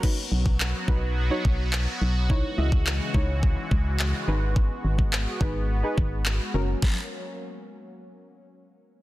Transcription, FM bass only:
X:1
M:4/4
L:1/8
Q:1/4=106
K:B
V:1 name="FM bass" clef=bass
z B,,,2 B,,,2 B,,,2 B,,,- | B,,, C,,2 C,,2 C,,2 G,,,- | G,,, G,,,2 G,,,2 G,,,2 F,,, | z8 |]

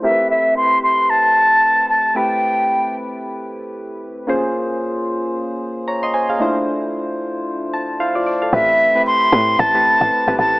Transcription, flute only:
X:1
M:4/4
L:1/8
Q:"Swing 16ths" 1/4=113
K:Am
V:1 name="Flute"
e e c' c' a3 a | g3 z4 z | z8 | z8 |
e2 c'2 a3 a |]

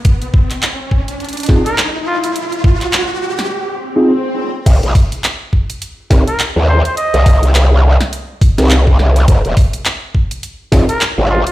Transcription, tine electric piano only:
X:1
M:4/4
L:1/16
Q:"Swing 16ths" 1/4=104
K:Fdor
V:1 name="Tine electric piano"
z8 z2 [CEFA] z4 z | z8 z3 [CEFA] z4 | z8 z2 [CEGB] z4 z | z8 z3 [CEGB] z4 |
z8 z2 [CEFA] z4 z |]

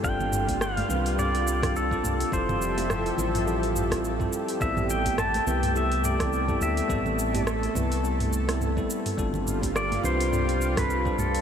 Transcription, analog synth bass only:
X:1
M:4/4
L:1/8
Q:"Swing 16ths" 1/4=105
K:Am
V:1 name="Analog synth bass" clef=bass
G,,,3 C,,4 C,, | F,,,3 A,,,4 z | A,,,3 C,,4 D,, | A,,,3 C,,4 z |
G,,,3 C,,4 C,, |]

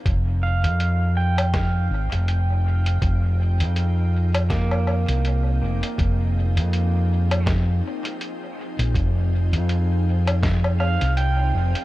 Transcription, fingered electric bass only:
X:1
M:4/4
L:1/16
Q:"Swing 16ths" 1/4=81
K:Fm
V:1 name="Fingered electric bass" clef=bass
F,,,3 F,,6- F,, A,,, F,,,4- F,,, | F,,,3 F,,8 C,,3 F,,, z | F,,,3 F,,6- F,, z4 z B,,, | F,,,3 F,,8 C,,3 F,,, z |]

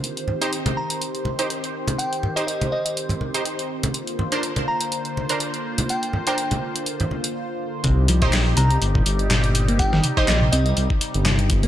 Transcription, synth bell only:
X:1
M:4/4
L:1/16
Q:"Swing 16ths" 1/4=123
K:Cm
V:1 name="Synth bell"
z6 b z8 z | g z2 e e z e e z8 | z6 b z8 z | g z2 g4 z8 z |
z6 b z8 z | g z2 e e z e e z8 |]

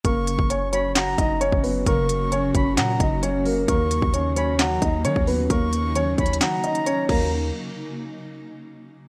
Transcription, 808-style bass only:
X:1
M:4/4
L:1/16
Q:1/4=132
K:Ebm
V:1 name="808-style bass" clef=bass
G,,,3 G,,,6- G,,, G,,,3 G,,,3 | G,,,6 G,,,2 B,,2 G,,,6 | E,,3 E,,6- E,, E,,2 E, E,,3 | E,,6 E,,2 z6 E,,2- |
E,,2 z12 z2 |]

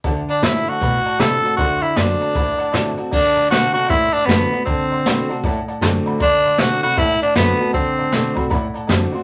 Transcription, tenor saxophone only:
X:1
M:4/4
L:1/8
Q:"Swing" 1/4=156
K:Dmix
V:1 name="Tenor saxophone"
z D E F3 A2 | F E D4- D z | D2 F F E D B,2 | C4 z4 |
D2 F F E D B,2 | C4 z4 |]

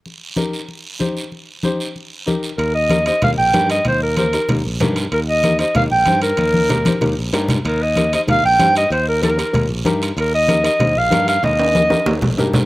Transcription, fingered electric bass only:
X:1
M:4/4
L:1/8
Q:1/4=190
K:Eb
V:1 name="Fingered electric bass" clef=bass
z8 | z8 | E,,4 E,, B,,, G,,2 | E,,4 E,, B,,, G,,2 |
E,,4 E,, B,,, G,,2 | E,,4 E,, B,,, G,,2 | E,,4 E,, B,,, G,,2 | E,,4 E,, B,,, G,,2 |
E,,4 E,, B,,, G,,2 | E,,4 E,, B,,, G,,2 |]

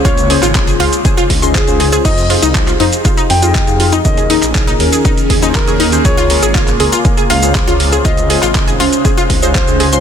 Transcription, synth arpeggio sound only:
X:1
M:4/4
L:1/16
Q:1/4=120
K:Dblyd
V:1 name="Synth arpeggio sound"
F z A F z A F z A F z c' c z A A | E z F E z F E z F E z F E z F E | z A E z A E z A E z A E z A E z | A F z A F z A F z A F z A F z A |
F z A F z A F z A F z c F z A c' |]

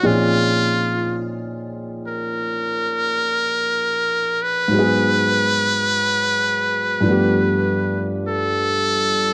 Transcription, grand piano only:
X:1
M:4/4
L:1/16
Q:"Swing" 1/4=51
K:Abmix
V:1 name="Grand piano"
^d z12 z3 | z16 |]
V:2 name="Grand piano"
[B,,F,CDEA]16 | [A,,G,A,_CA]8 [=G,,F,=A,=B,=G]8 |]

